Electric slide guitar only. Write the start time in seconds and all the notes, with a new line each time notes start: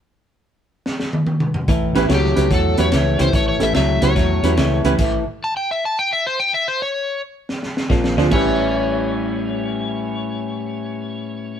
2.14 G4
2.54 A4
2.80 C#5
3.22 C5
3.35 C#5
3.49 C#5
3.63 E5
3.76 E5
4.03 C#5
5.44 A5
5.57 G5
5.71 E5
5.85 A5
5.99 G5
6.13 E5
6.27 C5
6.40 G5
6.54 E5
6.68 C5
6.82 C#5
8.33 C#5